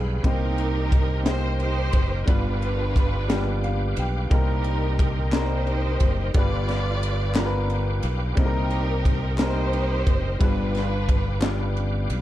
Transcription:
Already playing: B1 G2 G3 G#3 D4 F4 G#4 B4 F5 G5 B5
0.23 C2 C3 A#3 C4 D#4 G4 A#4 C5 D#5, kick, ride
0.27 C6
0.58 ride
0.92 kick, ride
1.23 A#3 C4 D#4 G4 C5 D#5, snare, ride
1.60 D#4 G4 C5, ride
1.93 F#1, kick, ride
2.26 G1 G2 G3 B3 D4 F4 B4 F5 D6, kick, ride
2.30 B4
2.62 ride
2.96 kick, ride
3.28 G3 A#3 D4 F4 G4, snare, ride
3.36 B3
3.64 F5, ride
3.96 B1 G5, ride
4.30 C2 C3 G3 A#3 C4 D#4 G4 A#4 D#5 C6, kick, ride
4.34 D#4
4.64 ride
4.99 kick, ride
5.32 G3 A#3 C4 D4 A#4 C5, snare, clap, ride
5.36 D#4 G4
5.40 D#4
5.67 ride
6.00 F#1, kick, ride
6.34 G1 G2 G3 B3 D4 F4 B4 D5 F5 D6, kick, ride
6.68 snare, ride
7.03 ride
7.35 G3 B3 D4 F4 A#4, snare, clap, ride
7.46 B4
7.70 ride
8.03 B1, ride
8.35 C2 C3 G3 A#3 C4 D#4 G4 G#4 A#4 D#5 C6, kick, ride
8.45 A#4
8.70 ride
9.05 kick, ride
9.38 G3 A#3 C4 D4 D#4 G4 A#4, snare, clap, ride
9.43 D#4 C5
9.73 ride
10.07 F#1, kick, ride
10.39 G1 G2 G3 B3 D4 F4 B4 F5 G5 D6, kick, ride
10.43 B4
10.75 snare, ride
11.09 kick, ride
11.40 G3 B3 D4 F4 D5, snare, clap, ride
11.77 ride
12.10 B1, ride

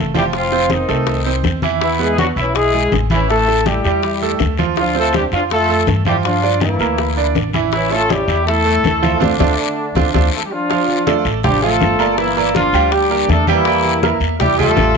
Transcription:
Already playing: F1
0.14 F3 G3 E4 F4 G4, high bongo, high conga, short guiro
0.33 F3 C4 F4, high bongo, high conga, long guiro
0.52 C4 C5, high bongo, high conga
0.70 D#3 C4 D#4, high bongo, high conga, short guiro
0.89 C2 A3 A4, high bongo, high conga, short guiro
1.07 high bongo, high conga, long guiro
1.26 C4 C5, high conga
1.44 E2, high bongo, low bongo, high conga, short guiro
1.62 E3 E4, high bongo, high conga, short guiro
1.81 E3 B3 E4, high bongo, high conga, long guiro
1.99 G#3 B3 E4 G#4 B4, high bongo, high conga
2.18 F#3 D4 F#4, high bongo, high conga, short guiro
2.36 B1 E3 C#4 E4 E5, high bongo, high conga, short guiro
2.55 G#3 E4 G#4, high bongo, high conga, long guiro
2.74 G#3 G#4, high conga
2.92 A1, high bongo, low bongo, high conga, short guiro
3.10 E3 C#4 E4, high bongo, high conga, short guiro
3.29 A3 E4 A4, high bongo, high conga, long guiro
3.48 A3 A4, high bongo, high conga
3.66 G3 E4 G4, high bongo, high conga, short guiro
3.84 E2 G3 G4, high bongo, high conga, short guiro
4.03 high bongo, high conga, long guiro
4.22 A3 A4, high conga
4.39 D2, high bongo, low bongo, high conga, short guiro
4.57 F3 F4, high bongo, high conga, short guiro
4.76 F3 D4 F4, high bongo, high conga, long guiro
4.95 A3 C4 F4 A4 C5, high bongo, high conga
5.13 G3 D4 G4, high bongo, high conga, short guiro
5.32 F2 F3 D4 F4 F5, high bongo, high conga, short guiro
5.50 A3 F4 A4, high bongo, high conga, long guiro
5.69 A3 A4, high conga
5.87 G2, high bongo, low bongo, high conga, short guiro
6.05 F3 G3 E4 F4 G4, high bongo, high conga, short guiro
6.23 F3 D4 F4, high bongo, high conga, long guiro
6.43 D4 D5, high bongo, high conga
6.60 E3 A#3 E4, high bongo, high conga, short guiro
6.79 D2 A#3 A#4, high bongo, high conga, short guiro
6.98 high bongo, high conga, long guiro
7.17 D4 D5, high conga
7.35 A1, high bongo, low bongo, high conga, short guiro
7.53 E3 E4, high bongo, high conga, short guiro
7.72 E3 C#4 E4, high bongo, high conga, long guiro
7.91 A3 C#4 F4 A4 C#5, high bongo, high conga
8.09 G3 E4 G4, high bongo, high conga, short guiro
8.28 E2 E4 E5, high bongo, high conga, short guiro
8.47 A3 E4 A4, high bongo, high conga, long guiro
8.65 A3 A4, high conga
8.84 D2, high bongo, low bongo, high conga, short guiro
9.02 F3 F4, high bongo, high conga, short guiro
9.20 D2 D3 A3 C4 D4 F4, high bongo, high conga, long guiro
9.39 D2 C4 D4 F4, high bongo, high conga, long guiro
9.95 D2 C4 D4 F4, high bongo, high conga, long guiro
10.14 D2 C4 D4 F4, high bongo, high conga, long guiro
10.34 A3 F4 A4
10.45 G3 G4
10.51 F3 D4 F4
10.70 F3 F4 F5, high bongo, high conga, long guiro
10.88 high bongo, high conga
11.07 A3 A4 D5, high bongo, high conga, short guiro
11.25 A1, high conga, short guiro
11.43 F3 G3 D4 F4 G4 F5, high bongo, high conga, low conga, long guiro
11.62 F3 A3 F4 A4 F5, high bongo, high conga
11.80 G1, high bongo, low bongo, high conga, short guiro
11.99 A#3 A#4 D5, high bongo, short guiro
12.17 E3 A#3 E4, high bongo, high conga, long guiro
12.37 A#3 A#4 D5, high bongo, high conga
12.54 F3 D4 F4, high bongo, high conga, short guiro
12.73 D2 G3 G4 G5, high conga, short guiro
12.91 G3 D4 G4, high bongo, high conga, long guiro
13.10 A#3 A#4 D5, high bongo, high conga
13.29 E2 A3 D4 A4, high bongo, low bongo, high conga, short guiro
13.47 E3 G3 A#3 E4 G4 G5, high bongo, high conga, short guiro
13.65 G3 G4 G5, high bongo, high conga, long guiro
13.85 high bongo, high conga
14.03 A#3 A#4 E5, high bongo, high conga, short guiro
14.20 E2, high conga, short guiro
14.39 G3 E4 G4 G5, high bongo, high conga, low conga, long guiro
14.58 G3 A3 F4 G4 A4 G5, high bongo, high conga, low conga
14.76 A1, high bongo, low bongo, high conga, short guiro

